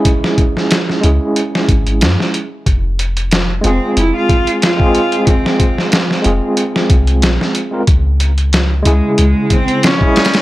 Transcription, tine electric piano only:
X:1
M:4/4
L:1/16
Q:"Swing 16ths" 1/4=92
K:Fm
V:1 name="Tine electric piano"
[A,D_FA]6 [A,DFA]8- [A,DFA] z | z6 [A,CFA]6- [A,CFA] [A,CFA]3- | [A,CFA]6 [A,CFA]8- [A,CFA] [A,CFB] | z6 [D,A,_FA]6- [D,A,FA] [A,DFA]3 |]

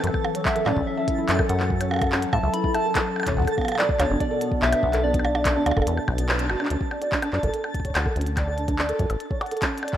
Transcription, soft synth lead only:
X:1
M:4/4
L:1/8
Q:1/4=144
K:D
V:1 name="Soft synth lead"
z2 e d e2 z f- | f3 a b a2 z | z2 d c d2 e2 | d6 z2 |
z8 | z8 |]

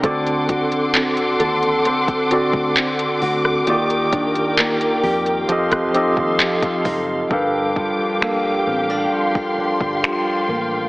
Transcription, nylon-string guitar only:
X:1
M:4/4
L:1/16
Q:1/4=66
K:Gm
V:1 name="Nylon-string guitar"
[D,A]2 ^F2 C2 A2 C2 F2 C2 F2 | [E,G]2 D2 B,2 G2 F,2 E2 C2 E2 | G,,2 F,2 B,2 C D F,2 D2 F,2 B,2 |]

